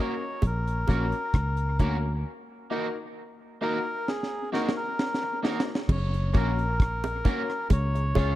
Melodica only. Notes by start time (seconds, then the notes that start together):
0.00 C#5
0.47 A#4
3.63 A#4
4.08 G#4
4.53 F#4
4.77 A#4
5.91 C#5
6.37 A#4
7.72 C#5